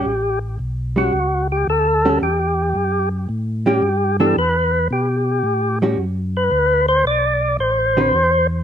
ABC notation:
X:1
M:4/4
L:1/8
Q:"Swing" 1/4=111
K:D
V:1 name="Tonewheel organ"
G z2 F2 G A2 | G3 z2 G2 A | B2 G3 z2 B- | B =c d2 c3 z |]
V:2 name="Hollow-body jazz guitar"
z3 [G,CF] z3 [G,CF] | z4 z [G,CF] z [E,B,DG] | z4 z [G,CF] z2 | z4 z [D,=CFB] z2 |]
V:3 name="Tonewheel organ" clef=bass
A,,,2 B,,,2 C,,2 D,,2 | E,,2 F,,2 A,,2 G,,2 | E,,2 B,,2 A,,2 F,,2 | D,,2 B,,,2 A,,,2 E,,2 |]